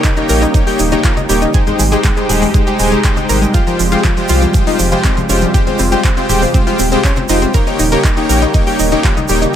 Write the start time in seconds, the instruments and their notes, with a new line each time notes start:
Already playing: supersaw synth C#3 G3 A#3 D#4 G4
0.04 synth arpeggio sound D#4, kick, clap, closed hi-hat, shaker
0.16 supersaw synth A#3 D#4 G4 C#5 G5, synth arpeggio sound D#4, closed hi-hat, high woodblock, shaker
0.29 analog synth bass A#1, supersaw synth A#3 D#4 G4 C#5 G5, synth arpeggio sound A#4, open hi-hat, shaker
0.42 synth arpeggio sound D#4, closed hi-hat, high woodblock, shaker
0.54 supersaw synth A#3 D#4 G4 C#5 G5, synth arpeggio sound D#4, kick, closed hi-hat, shaker
0.67 supersaw synth A#3 D#4 G4 C#5 G5, synth arpeggio sound G4, open hi-hat, high woodblock, shaker
0.79 analog synth bass D#1, synth arpeggio sound D#4, open hi-hat, shaker
0.92 supersaw synth A#3 D#4 G4 C#5 G5, synth arpeggio sound D#4, closed hi-hat, high conga, shaker
1.04 supersaw synth A#3 D#4 G4 C#5 G5, synth arpeggio sound F4, kick, clap, closed hi-hat, high woodblock, shaker
1.17 synth arpeggio sound D#4, closed hi-hat, high conga, shaker
1.29 analog synth bass D#1, supersaw synth A#3 D#4 G4 C#5 G5, synth arpeggio sound G4, open hi-hat, high woodblock, shaker
1.41 synth arpeggio sound D#4, closed hi-hat, shaker
1.54 supersaw synth C3 G#3 D#4 G4 C5 G5, synth arpeggio sound G#4, kick, closed hi-hat, high woodblock, shaker
1.67 synth arpeggio sound G#3, supersaw synth G#3 D#4 G4 C5 G5, closed hi-hat, low conga, shaker
1.79 analog synth bass G#1, synth arpeggio sound G#3, open hi-hat, shaker
1.92 supersaw synth G#3 D#4 G4 C5 G5, synth arpeggio sound G#4, closed hi-hat, high woodblock, shaker
2.04 synth arpeggio sound G#3, kick, clap, closed hi-hat, shaker
2.17 synth arpeggio sound G#3, supersaw synth G#3 D#4 G4 C5 G5, closed hi-hat, high woodblock, shaker
2.29 analog synth bass D#1, supersaw synth G#3 D#4 G4 C5 G5, synth arpeggio sound G#4, open hi-hat, low conga, shaker
2.42 synth arpeggio sound G#3, open hi-hat, low conga, high woodblock, shaker
2.54 synth arpeggio sound G#3, supersaw synth G#3 D#4 G4 C5 G5, kick, closed hi-hat, shaker
2.67 supersaw synth G#3 D#4 G4 C5 G5, synth arpeggio sound G4, closed hi-hat, shaker
2.79 analog synth bass D#1, synth arpeggio sound G#3, supersaw synth G#3 D#4 G4 C5 G#5, open hi-hat, high woodblock, shaker
2.91 synth arpeggio sound G#3, supersaw synth G#3 D#4 G4 C5 A#5, closed hi-hat, high conga, shaker
3.04 supersaw synth G#3 D#4 G4 C5 G5, synth arpeggio sound G#4, kick, clap, closed hi-hat, high woodblock, shaker
3.17 synth arpeggio sound G#3, closed hi-hat, high conga, shaker
3.29 analog synth bass G#1, supersaw synth G#3 D#4 G4 C5 G5, synth arpeggio sound A#4, open hi-hat, high woodblock, shaker
3.42 synth arpeggio sound G#3, closed hi-hat, shaker
3.54 supersaw synth G#3 F4 G4 C5 G5, synth arpeggio sound F4, kick, closed hi-hat, shaker
3.67 synth arpeggio sound F3, supersaw synth G#3 F4 G4 C5 G5, closed hi-hat, shaker
3.79 analog synth bass F1, synth arpeggio sound F3, open hi-hat, high woodblock, shaker
3.92 supersaw synth G#3 F4 G4 C5 G5, synth arpeggio sound F4, closed hi-hat, shaker
4.04 synth arpeggio sound F3, kick, clap, closed hi-hat, high woodblock, shaker
4.17 synth arpeggio sound F3, supersaw synth G#3 F4 G4 C5 G5, closed hi-hat, shaker
4.29 analog synth bass C2, supersaw synth G#3 F4 G4 C5 G5, synth arpeggio sound F4, open hi-hat, high woodblock, shaker
4.42 synth arpeggio sound F3, closed hi-hat, shaker
4.54 synth arpeggio sound F3, supersaw synth G#3 F4 G4 C5 G5, kick, closed hi-hat, shaker
4.66 supersaw synth G#3 F4 G4 C5 G5, synth arpeggio sound D#4, open hi-hat, high woodblock, shaker
4.79 analog synth bass F1, synth arpeggio sound F3, open hi-hat, shaker
4.92 synth arpeggio sound F3, supersaw synth G#3 F4 G4 C5 G5, closed hi-hat, high conga, high woodblock, shaker
5.04 supersaw synth G#3 F4 G4 C5 G5, synth arpeggio sound C4, kick, clap, closed hi-hat, shaker
5.17 synth arpeggio sound F3, closed hi-hat, high conga, high woodblock, shaker
5.29 analog synth bass F1, supersaw synth G#3 F4 G4 C5 G5, synth arpeggio sound C#4, open hi-hat, shaker
5.41 synth arpeggio sound F3, closed hi-hat, shaker
5.54 supersaw synth G#3 F4 G4 C5 G5, synth arpeggio sound G4, kick, closed hi-hat, high woodblock, shaker
5.67 supersaw synth G#3 F4 G4 C5 G5, synth arpeggio sound C4, closed hi-hat, low conga, shaker
5.79 analog synth bass F1, synth arpeggio sound C4, open hi-hat, high woodblock, shaker
5.92 supersaw synth G#3 F4 G4 C5 G5, synth arpeggio sound G4, closed hi-hat, shaker
6.04 synth arpeggio sound C4, kick, clap, closed hi-hat, shaker
6.17 supersaw synth G#3 F4 G4 C5 G5, synth arpeggio sound C4, closed hi-hat, shaker
6.29 analog synth bass D#1, supersaw synth G#3 F4 G4 C5 G5, synth arpeggio sound G4, open hi-hat, low conga, shaker
6.41 synth arpeggio sound C4, open hi-hat, low conga, high woodblock, shaker
6.54 supersaw synth G#3 F4 G4 C5 G5, synth arpeggio sound C4, kick, closed hi-hat, shaker
6.67 supersaw synth G#3 F4 G4 C5 G5, synth arpeggio sound F4, closed hi-hat, high woodblock, shaker
6.79 analog synth bass D#1, synth arpeggio sound C4, open hi-hat, shaker
6.92 supersaw synth G#3 F4 G4 C5 G5, synth arpeggio sound C4, closed hi-hat, high conga, high woodblock, shaker
7.04 supersaw synth G#3 F4 G4 C5 G5, synth arpeggio sound C#4, kick, clap, closed hi-hat, shaker
7.16 synth arpeggio sound C4, closed hi-hat, high conga, shaker
7.29 analog synth bass F1, supersaw synth G#3 F4 G4 C5 G5, synth arpeggio sound D#4, open hi-hat, high woodblock, shaker
7.42 synth arpeggio sound C4, closed hi-hat, shaker
7.54 supersaw synth C#3 G3 A#3 D#4 G4 C#5 G5, synth arpeggio sound A#4, kick, closed hi-hat, high woodblock, shaker
7.67 supersaw synth A#3 D#4 G4 C#5 G5, synth arpeggio sound D#4, closed hi-hat, shaker
7.79 analog synth bass D#1, synth arpeggio sound D#4, open hi-hat, high woodblock, shaker
7.92 supersaw synth A#3 D#4 G4 C#5 G5, synth arpeggio sound A#4, closed hi-hat, shaker
8.04 synth arpeggio sound D#4, kick, clap, closed hi-hat, shaker
8.17 supersaw synth A#3 D#4 G4 C#5 G5, synth arpeggio sound D#4, closed hi-hat, high woodblock, shaker
8.29 analog synth bass A#1, supersaw synth A#3 D#4 G4 C#5 G5, synth arpeggio sound A#4, open hi-hat, shaker
8.42 synth arpeggio sound D#4, closed hi-hat, high woodblock, shaker
8.54 supersaw synth A#3 D#4 G4 C#5 G5, synth arpeggio sound D#4, kick, closed hi-hat, shaker
8.66 supersaw synth A#3 D#4 G4 C#5 G5, synth arpeggio sound G4, open hi-hat, high woodblock, shaker
8.79 analog synth bass D#1, synth arpeggio sound D#4, open hi-hat, shaker
8.91 supersaw synth A#3 D#4 G4 C#5 G5, synth arpeggio sound D#4, closed hi-hat, high conga, shaker
9.04 supersaw synth A#3 D#4 G4 C#5 G5, synth arpeggio sound F4, kick, clap, closed hi-hat, high woodblock, shaker
9.17 synth arpeggio sound D#4, closed hi-hat, high conga, shaker
9.28 analog synth bass D#1, supersaw synth A#3 D#4 G4 C#5 G5, synth arpeggio sound G4, open hi-hat, high woodblock, shaker
9.42 synth arpeggio sound D#4, closed hi-hat, shaker